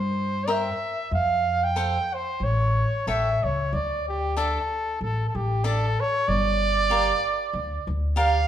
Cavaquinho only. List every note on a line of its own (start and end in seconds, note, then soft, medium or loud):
0.48 0.69 A#4 medium
0.48 0.69 C5 medium
0.48 0.69 E5 medium
0.48 0.69 G5 medium
1.76 1.98 A4 medium
1.76 1.98 C5 medium
1.76 1.98 F5 medium
1.76 1.98 G5 medium
3.07 3.29 A4 medium
3.07 3.29 C#5 medium
3.07 3.29 E5 medium
3.07 3.30 G5 medium
4.37 4.58 D4 medium
4.37 4.58 A4 medium
4.37 4.58 D5 medium
4.37 4.58 E5 medium
5.64 5.85 D4 medium
5.64 5.85 A4 medium
5.64 5.86 D5 medium
5.64 5.85 E5 medium
6.90 7.11 G4 medium
6.90 7.12 A#4 medium
6.90 7.12 D5 medium
6.90 7.12 F5 medium
8.16 8.37 G4 medium
8.16 8.37 A#4 medium
8.16 8.37 D5 medium
8.16 8.37 F5 medium